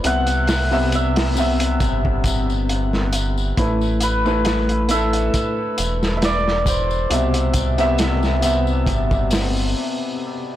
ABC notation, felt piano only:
X:1
M:4/4
L:1/16
Q:"Swing 16ths" 1/4=68
K:Clyd
V:1 name="Felt piano"
[C,B,e]3 [C,B,e]3 [C,B,e]8- [C,B,e]2 | [A,EB]3 [A,EB]3 [A,EA]8- [A,EA]2 | [B,,C,e]3 [C,B,e]3 [C,B,e]8- [C,B,e]2 |]